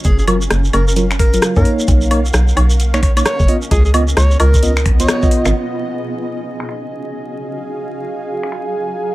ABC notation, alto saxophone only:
X:1
M:4/4
L:1/16
Q:"Swing 16ths" 1/4=131
K:Gb
V:1 name="Alto saxophone"
A A z4 B B z2 B2 z B z2 | z8 z ^c c z c2 z2 | A A z2 d2 B4 z d3 z2 | z16 |
z16 |]